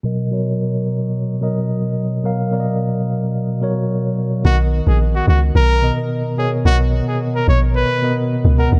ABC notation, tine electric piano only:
X:1
M:4/4
L:1/8
Q:1/4=109
K:Blyd
V:1 name="Tine electric piano"
[B,,F,Ad] [B,,F,Ac]4 [B,,F,Ad]3 | [B,,F,Ae] [B,,F,A=d^d]4 [B,,F,Ac]3 | [D,B,Ad]4 z [B,,B,Ad]2 [B,,B,Ac] | [B,,B,Ad]4 z [B,,B,Ad]2 [B,,B,Af] |]